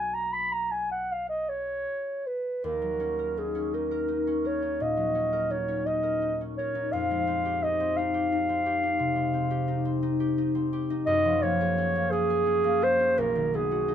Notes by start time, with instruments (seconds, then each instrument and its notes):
Already playing: harp B1 F#3 A#3 B3 D#4 A#4, clarinet G#5
0.14 clarinet A#5
0.32 clarinet B5
0.53 clarinet A#5
0.71 clarinet G#5
0.91 clarinet F#5
1.12 clarinet F5
1.29 clarinet D#5
1.49 clarinet C#5
2.27 clarinet B4
2.64 harp D#2, clarinet A#4
2.82 harp F#3
3.00 harp C#4
3.19 harp A#4
3.37 harp D#4, clarinet G#4
3.55 harp C#4
3.74 harp D#4, clarinet A#4
3.91 harp A#4
4.08 harp D#4
4.27 harp C#4
4.45 harp A#4, clarinet C#5
4.62 harp D#4
4.80 harp A#2, clarinet D#5
4.97 harp F#3
5.15 harp C#4
5.33 harp A#4
5.50 harp D#4, clarinet C#5
5.68 harp C#4
5.86 harp D#4, clarinet D#5
6.03 harp A#4
6.22 harp D#4
6.41 harp C#4
6.58 harp A#4, clarinet C#5
6.75 harp D#4
6.92 harp F2, clarinet F5
7.11 harp G#3
7.27 harp C4
7.45 harp G4
7.63 harp D#4, clarinet D#5
7.80 harp C4
7.97 harp D#4, clarinet F5
8.14 harp G4
8.32 harp D#4
8.49 harp C4
8.66 harp G4
8.83 harp D#4
8.99 harp C3
9.16 harp G#3
9.33 harp C4
9.51 harp G4
9.68 harp D#4
9.85 harp C4
10.03 harp D#4
10.20 harp G4
10.38 harp D#4
10.55 harp C4
10.73 harp G4
10.90 harp D#4
11.06 harp F#2, clarinet D#5
11.25 harp F3
11.43 harp A#3, clarinet C#5
11.61 harp G#4
11.78 harp C#4
11.95 harp A#3
12.11 harp C#4, clarinet G#4
12.30 harp G#4
12.46 harp C#4
12.64 harp A#3
12.82 harp G#4, clarinet C5
13.00 harp C#4
13.18 harp B1, clarinet A#4
13.36 harp D#3
13.54 harp B3, clarinet G#4
13.71 harp F#4
13.88 harp D#4